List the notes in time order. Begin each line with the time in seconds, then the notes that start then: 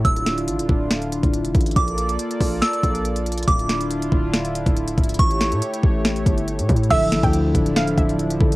Already playing: E4
0.05 D1 D3 D4 F4 E6, kick, closed hi-hat
0.16 closed hi-hat
0.26 snare, closed hi-hat
0.38 closed hi-hat
0.48 A1, closed hi-hat
0.59 D1, closed hi-hat
0.69 D1, kick
0.91 snare, closed hi-hat
1.02 closed hi-hat
1.12 closed hi-hat
1.23 D1, kick, closed hi-hat
1.34 closed hi-hat
1.45 F1, closed hi-hat
1.55 A1, kick, closed hi-hat
1.61 closed hi-hat
1.66 closed hi-hat
1.71 closed hi-hat
1.76 A#1 A#3 F4 A4 D5 D6, kick, closed hi-hat
1.88 closed hi-hat
1.98 closed hi-hat
2.09 closed hi-hat
2.19 closed hi-hat
2.31 closed hi-hat
2.41 A#1, kick, open hi-hat
2.62 E6, snare, closed hi-hat
2.73 closed hi-hat
2.83 A#1, kick, closed hi-hat
2.95 closed hi-hat
3.05 closed hi-hat
3.16 closed hi-hat
3.26 closed hi-hat
3.32 closed hi-hat
3.38 closed hi-hat
3.43 closed hi-hat
3.48 D1 D3 D4 E4 F4 D6, kick, closed hi-hat
3.59 closed hi-hat
3.69 snare, closed hi-hat
3.81 closed hi-hat
3.91 closed hi-hat
4.02 closed hi-hat
4.12 D1, kick
4.34 snare, closed hi-hat
4.45 closed hi-hat
4.55 closed hi-hat
4.66 D1, kick, closed hi-hat
4.76 closed hi-hat
4.88 closed hi-hat
4.98 C#1, kick, closed hi-hat
5.03 closed hi-hat
5.09 closed hi-hat
5.14 closed hi-hat
5.19 A1 A3 G4 C#5 C#6, kick, closed hi-hat
5.31 closed hi-hat
5.41 snare, closed hi-hat
5.52 A2, closed hi-hat
5.62 closed hi-hat
5.74 closed hi-hat
5.83 A1, kick
6.05 snare, closed hi-hat
6.16 closed hi-hat
6.26 G1, kick, closed hi-hat
6.38 closed hi-hat
6.48 closed hi-hat
6.59 A2, closed hi-hat
6.69 A2, kick, closed hi-hat
6.76 closed hi-hat
6.83 closed hi-hat
6.89 D1 D3 F3 D4 E4 A4 E5 E6, kick, closed hi-hat, crash
7.12 A1, snare, closed hi-hat
7.23 D2 G5, kick, closed hi-hat
7.33 closed hi-hat
7.55 D1, kick, closed hi-hat
7.66 closed hi-hat
7.76 F5, snare, closed hi-hat
7.88 closed hi-hat
7.98 D1 E5, kick, closed hi-hat
8.09 closed hi-hat
8.19 closed hi-hat
8.30 closed hi-hat
8.40 A1 D3 F3 E4 A4, kick
8.52 closed hi-hat